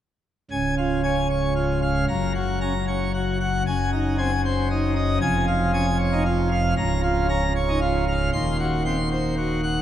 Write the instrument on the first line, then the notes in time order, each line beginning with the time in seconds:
pipe organ
0.51 C#1 C#2 G#5
0.78 F4
1.04 C#4 G#5
1.30 C#5
1.56 F4
1.82 F5
2.08 F#1 F#2 A#5
2.35 F#4
2.61 C#4 A#5
2.88 C#5
3.14 F#4
3.40 F#5
3.66 F#1 F#2 G#5
3.92 D#4
4.18 C4 G#5
4.45 C5
4.70 D#4
4.96 D#5
5.21 F1 F2 G#5
5.47 F4
5.73 C#4 G#5
5.99 C#5
6.12 D#4
6.26 F4
6.52 F5
6.77 C#1 C#2 A#5
7.03 F4
7.29 C#4 A#5
7.56 C#5
7.69 D#4
7.81 F4
8.08 F5
8.33 D#1 D#2 C6
8.59 F#4
8.85 C4 C6
9.11 C5
9.37 F#4
9.63 F#5